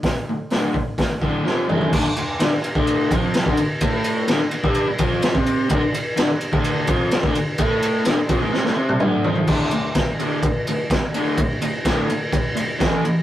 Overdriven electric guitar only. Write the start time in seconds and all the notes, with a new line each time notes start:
0.05 D2 A2
0.29 D2 A2
0.52 D2 A2 D3
0.75 D2 A2
1.00 D2 A2
1.22 D2 A2 D3
1.45 F2 C3 F3
1.69 A2 E3 A3
1.93 D2 D3
2.06 muted overdriven electric guitar stroke
2.17 D2
2.40 D3 D4
2.52 muted overdriven electric guitar stroke
2.76 D2 D3
3.12 F2 F3
3.47 D2 D3
3.59 D2
3.82 A2 A3
4.28 D2 D3
4.40 muted overdriven electric guitar stroke
4.53 muted overdriven electric guitar stroke
4.63 G2 G3
4.88 muted overdriven electric guitar stroke
4.99 F2 F3
5.34 C3 C4
5.70 D2 D3
5.81 muted overdriven electric guitar stroke
5.93 D2
6.16 D3 D4
6.30 muted overdriven electric guitar stroke
6.52 D2 D3
6.88 F2 F3
7.23 D2 D3
7.34 D2
7.59 A2 A3
8.05 D2 D3
8.17 muted overdriven electric guitar stroke
8.29 F2 F3
8.42 G#2 G#3
8.53 C3 C4
8.64 A2 A3
8.76 C3 C4
9.00 D2 D3
9.25 F2 F3
9.47 D2 A2 D3
9.72 D2 A2
9.95 D2 A2
10.20 D2 A2 D3
10.44 D2 A2
10.68 D2 A2
10.92 D2 A2
11.14 D2 A2 D3
11.39 D2 A2
11.62 D2 A2
11.86 D2 A2 D3
12.09 D2 A2
12.32 D2 A2
12.56 D2 A2
12.79 A2 E3 A3
13.04 A2 E3